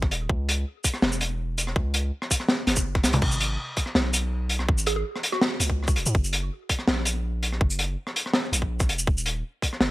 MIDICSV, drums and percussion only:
0, 0, Header, 1, 2, 480
1, 0, Start_track
1, 0, Key_signature, 5, "minor"
1, 0, Tempo, 365854
1, 390, Time_signature, 4, 2, 24, 8
1, 12999, End_track
2, 0, Start_track
2, 0, Title_t, "Drums"
2, 24, Note_on_c, 9, 37, 35
2, 31, Note_on_c, 9, 36, 102
2, 148, Note_on_c, 9, 42, 73
2, 155, Note_off_c, 9, 37, 0
2, 163, Note_off_c, 9, 36, 0
2, 279, Note_off_c, 9, 42, 0
2, 387, Note_on_c, 9, 36, 116
2, 518, Note_off_c, 9, 36, 0
2, 638, Note_on_c, 9, 42, 88
2, 770, Note_off_c, 9, 42, 0
2, 1104, Note_on_c, 9, 82, 81
2, 1108, Note_on_c, 9, 36, 61
2, 1111, Note_on_c, 9, 42, 73
2, 1228, Note_on_c, 9, 37, 60
2, 1235, Note_off_c, 9, 82, 0
2, 1239, Note_off_c, 9, 36, 0
2, 1242, Note_off_c, 9, 42, 0
2, 1343, Note_on_c, 9, 38, 105
2, 1359, Note_off_c, 9, 37, 0
2, 1473, Note_on_c, 9, 82, 53
2, 1475, Note_off_c, 9, 38, 0
2, 1584, Note_on_c, 9, 42, 81
2, 1604, Note_off_c, 9, 82, 0
2, 1715, Note_off_c, 9, 42, 0
2, 2070, Note_on_c, 9, 42, 78
2, 2075, Note_on_c, 9, 82, 51
2, 2194, Note_on_c, 9, 37, 55
2, 2202, Note_off_c, 9, 42, 0
2, 2206, Note_off_c, 9, 82, 0
2, 2308, Note_on_c, 9, 36, 116
2, 2325, Note_off_c, 9, 37, 0
2, 2439, Note_off_c, 9, 36, 0
2, 2543, Note_on_c, 9, 42, 94
2, 2674, Note_off_c, 9, 42, 0
2, 2912, Note_on_c, 9, 37, 61
2, 3028, Note_on_c, 9, 36, 59
2, 3030, Note_on_c, 9, 82, 82
2, 3031, Note_on_c, 9, 42, 78
2, 3043, Note_off_c, 9, 37, 0
2, 3147, Note_on_c, 9, 37, 52
2, 3159, Note_off_c, 9, 36, 0
2, 3161, Note_off_c, 9, 82, 0
2, 3162, Note_off_c, 9, 42, 0
2, 3260, Note_on_c, 9, 38, 104
2, 3278, Note_off_c, 9, 37, 0
2, 3392, Note_off_c, 9, 38, 0
2, 3503, Note_on_c, 9, 42, 82
2, 3505, Note_on_c, 9, 38, 54
2, 3622, Note_on_c, 9, 82, 74
2, 3632, Note_on_c, 9, 36, 62
2, 3634, Note_off_c, 9, 42, 0
2, 3636, Note_off_c, 9, 38, 0
2, 3753, Note_off_c, 9, 82, 0
2, 3763, Note_off_c, 9, 36, 0
2, 3870, Note_on_c, 9, 37, 41
2, 3872, Note_on_c, 9, 36, 103
2, 3981, Note_on_c, 9, 42, 72
2, 3985, Note_on_c, 9, 38, 61
2, 3994, Note_on_c, 9, 82, 59
2, 4001, Note_off_c, 9, 37, 0
2, 4003, Note_off_c, 9, 36, 0
2, 4103, Note_off_c, 9, 42, 0
2, 4103, Note_on_c, 9, 42, 57
2, 4116, Note_off_c, 9, 38, 0
2, 4116, Note_on_c, 9, 47, 74
2, 4126, Note_off_c, 9, 82, 0
2, 4220, Note_on_c, 9, 49, 118
2, 4226, Note_on_c, 9, 36, 122
2, 4234, Note_off_c, 9, 42, 0
2, 4247, Note_off_c, 9, 47, 0
2, 4349, Note_on_c, 9, 82, 58
2, 4351, Note_off_c, 9, 49, 0
2, 4357, Note_off_c, 9, 36, 0
2, 4465, Note_on_c, 9, 42, 88
2, 4480, Note_off_c, 9, 82, 0
2, 4596, Note_off_c, 9, 42, 0
2, 4941, Note_on_c, 9, 42, 82
2, 4946, Note_on_c, 9, 36, 65
2, 5064, Note_on_c, 9, 37, 51
2, 5072, Note_off_c, 9, 42, 0
2, 5077, Note_off_c, 9, 36, 0
2, 5183, Note_on_c, 9, 38, 109
2, 5195, Note_off_c, 9, 37, 0
2, 5315, Note_off_c, 9, 38, 0
2, 5423, Note_on_c, 9, 42, 84
2, 5424, Note_on_c, 9, 82, 74
2, 5554, Note_off_c, 9, 42, 0
2, 5555, Note_off_c, 9, 82, 0
2, 5896, Note_on_c, 9, 42, 76
2, 6025, Note_on_c, 9, 37, 60
2, 6027, Note_off_c, 9, 42, 0
2, 6147, Note_on_c, 9, 36, 126
2, 6156, Note_off_c, 9, 37, 0
2, 6271, Note_on_c, 9, 82, 57
2, 6278, Note_off_c, 9, 36, 0
2, 6382, Note_on_c, 9, 42, 83
2, 6402, Note_off_c, 9, 82, 0
2, 6513, Note_off_c, 9, 42, 0
2, 6765, Note_on_c, 9, 37, 59
2, 6866, Note_on_c, 9, 42, 82
2, 6896, Note_off_c, 9, 37, 0
2, 6992, Note_on_c, 9, 37, 54
2, 6997, Note_off_c, 9, 42, 0
2, 7104, Note_on_c, 9, 38, 127
2, 7123, Note_off_c, 9, 37, 0
2, 7236, Note_off_c, 9, 38, 0
2, 7344, Note_on_c, 9, 42, 91
2, 7355, Note_on_c, 9, 82, 77
2, 7473, Note_on_c, 9, 36, 65
2, 7476, Note_off_c, 9, 42, 0
2, 7487, Note_off_c, 9, 82, 0
2, 7604, Note_off_c, 9, 36, 0
2, 7644, Note_on_c, 9, 37, 40
2, 7708, Note_on_c, 9, 82, 51
2, 7712, Note_on_c, 9, 36, 109
2, 7776, Note_off_c, 9, 37, 0
2, 7818, Note_on_c, 9, 42, 73
2, 7840, Note_off_c, 9, 82, 0
2, 7843, Note_off_c, 9, 36, 0
2, 7950, Note_off_c, 9, 42, 0
2, 7950, Note_on_c, 9, 82, 79
2, 8066, Note_on_c, 9, 36, 127
2, 8081, Note_off_c, 9, 82, 0
2, 8190, Note_on_c, 9, 82, 53
2, 8198, Note_off_c, 9, 36, 0
2, 8301, Note_on_c, 9, 42, 82
2, 8321, Note_off_c, 9, 82, 0
2, 8432, Note_off_c, 9, 42, 0
2, 8781, Note_on_c, 9, 42, 84
2, 8784, Note_on_c, 9, 36, 65
2, 8905, Note_on_c, 9, 37, 55
2, 8913, Note_off_c, 9, 42, 0
2, 8915, Note_off_c, 9, 36, 0
2, 9021, Note_on_c, 9, 38, 127
2, 9036, Note_off_c, 9, 37, 0
2, 9152, Note_off_c, 9, 38, 0
2, 9254, Note_on_c, 9, 42, 94
2, 9264, Note_on_c, 9, 82, 74
2, 9385, Note_off_c, 9, 42, 0
2, 9396, Note_off_c, 9, 82, 0
2, 9743, Note_on_c, 9, 42, 75
2, 9873, Note_on_c, 9, 37, 51
2, 9874, Note_off_c, 9, 42, 0
2, 9982, Note_on_c, 9, 36, 127
2, 10004, Note_off_c, 9, 37, 0
2, 10106, Note_on_c, 9, 82, 49
2, 10114, Note_off_c, 9, 36, 0
2, 10218, Note_on_c, 9, 42, 92
2, 10237, Note_off_c, 9, 82, 0
2, 10350, Note_off_c, 9, 42, 0
2, 10585, Note_on_c, 9, 37, 59
2, 10706, Note_on_c, 9, 42, 80
2, 10716, Note_off_c, 9, 37, 0
2, 10836, Note_on_c, 9, 37, 54
2, 10837, Note_off_c, 9, 42, 0
2, 10936, Note_on_c, 9, 38, 125
2, 10968, Note_off_c, 9, 37, 0
2, 11067, Note_off_c, 9, 38, 0
2, 11189, Note_on_c, 9, 42, 90
2, 11198, Note_on_c, 9, 82, 78
2, 11309, Note_on_c, 9, 36, 64
2, 11320, Note_off_c, 9, 42, 0
2, 11329, Note_off_c, 9, 82, 0
2, 11440, Note_off_c, 9, 36, 0
2, 11541, Note_on_c, 9, 82, 49
2, 11542, Note_on_c, 9, 37, 38
2, 11549, Note_on_c, 9, 36, 109
2, 11666, Note_on_c, 9, 42, 83
2, 11672, Note_off_c, 9, 82, 0
2, 11673, Note_off_c, 9, 37, 0
2, 11680, Note_off_c, 9, 36, 0
2, 11791, Note_on_c, 9, 82, 81
2, 11797, Note_off_c, 9, 42, 0
2, 11904, Note_on_c, 9, 36, 124
2, 11922, Note_off_c, 9, 82, 0
2, 12036, Note_off_c, 9, 36, 0
2, 12039, Note_on_c, 9, 82, 60
2, 12144, Note_on_c, 9, 42, 91
2, 12170, Note_off_c, 9, 82, 0
2, 12276, Note_off_c, 9, 42, 0
2, 12626, Note_on_c, 9, 36, 66
2, 12637, Note_on_c, 9, 42, 77
2, 12758, Note_off_c, 9, 36, 0
2, 12762, Note_on_c, 9, 37, 47
2, 12768, Note_off_c, 9, 42, 0
2, 12865, Note_on_c, 9, 38, 113
2, 12894, Note_off_c, 9, 37, 0
2, 12996, Note_off_c, 9, 38, 0
2, 12999, End_track
0, 0, End_of_file